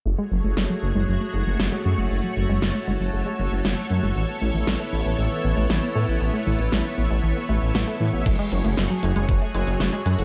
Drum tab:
CC |----------------|----------------|----------------|----------------|
HH |----------------|----------------|----------------|----------------|
SD |----o-------o---|----o-------o---|----o-------o---|----o-------o---|
BD |----------------|----------------|----------------|----------------|

CC |x---------------|
HH |xxxxxxxxxxxxxxxx|
SD |----o-------o---|
BD |o-------o-------|